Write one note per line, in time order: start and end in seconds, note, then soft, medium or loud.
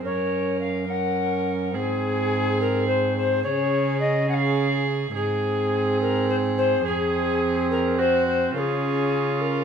0.02 1.75 F#2 medium
0.02 0.87 C#4 medium
0.02 0.87 A#4 medium
0.02 0.59 C#5 medium
0.60 0.91 F5 medium
0.88 1.74 C#4 medium
0.88 1.75 A#4 medium
0.88 1.74 F#5 medium
1.72 3.45 G#2 medium
1.72 3.43 C4 medium
1.72 3.44 G#4 medium
1.72 2.58 G#4 medium
2.60 2.86 A#4 medium
2.86 3.15 C5 medium
3.16 3.42 C5 medium
3.43 5.13 C#3 medium
3.43 4.28 C#4 medium
3.43 4.28 G#4 medium
3.43 3.99 C#5 medium
3.99 4.28 D#5 medium
4.28 4.85 C#4 medium
4.28 5.13 G#4 medium
4.28 4.34 F#5 medium
4.33 4.85 F5 loud
5.14 6.81 G#2 medium
5.14 6.80 C4 medium
5.14 6.81 G#4 medium
5.14 5.96 G#4 medium
6.01 6.28 A#4 medium
6.29 6.35 C5 medium
6.57 6.84 C5 medium
6.84 8.51 F2 medium
6.84 8.56 C4 medium
6.84 8.00 G#4 medium
6.84 7.69 G#4 medium
7.70 7.98 A#4 medium
7.98 8.54 F#4 medium
7.98 8.25 C5 medium
8.26 8.53 C5 medium
8.54 9.64 C#3 medium
8.54 9.64 C#4 medium
8.54 9.64 F4 medium
8.54 9.41 G#4 medium
8.54 8.58 A#4 medium
9.40 9.64 A#4 medium